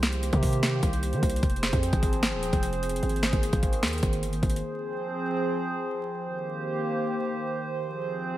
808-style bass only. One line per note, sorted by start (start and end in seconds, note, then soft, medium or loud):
0.00 0.31 C2 loud
0.33 0.81 C3 loud
0.83 1.14 C2 loud
1.13 1.22 D#3 loud
1.23 1.42 C2 loud
1.43 1.72 F1 loud
1.73 1.92 F2 loud
1.93 2.34 G#1 loud
2.33 2.52 D#1 loud
2.53 3.01 F1 loud
3.03 3.32 G#1 loud
3.33 3.52 G#1 loud
3.53 3.84 G#1 loud
3.83 4.02 D#2 loud
4.03 4.24 G#1 loud
4.23 4.34 G1 loud
4.33 4.42 G#1 loud
4.43 4.62 G#1 loud